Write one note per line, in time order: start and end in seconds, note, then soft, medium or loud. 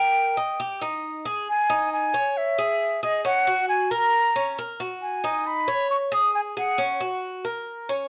0.00 0.36 A#4 medium
0.00 0.82 G5 loud
0.37 0.59 D#5 medium
0.60 0.81 G4 medium
0.82 1.25 D#4 medium
1.25 1.47 G#4 medium
1.49 1.90 G#5 loud
1.70 2.13 D#4 medium
1.93 2.39 G#5 medium
2.14 2.57 C#5 medium
2.37 3.03 E5 medium
2.58 3.01 G#4 medium
3.03 3.24 G#4 medium
3.03 3.24 D#5 medium
3.25 3.46 C#4 medium
3.25 3.66 F#5 loud
3.47 3.90 F#4 medium
3.69 3.92 G#5 medium
3.91 4.34 A#4 medium
3.91 4.57 A#5 loud
4.36 4.57 C#4 medium
4.58 4.80 A#4 medium
4.80 5.23 F#4 medium
5.02 5.48 G#5 medium
5.24 5.67 D#4 medium
5.46 5.90 B5 medium
5.68 6.11 C#5 medium
5.90 5.96 C#6 medium
6.12 6.55 G#4 medium
6.12 6.33 D#6 loud
6.35 6.41 G#5 loud
6.57 6.78 G#4 medium
6.57 7.20 F#5 medium
6.78 7.00 C#4 medium
7.00 7.44 F#4 medium
7.45 7.88 A#4 medium
7.89 8.08 C#4 medium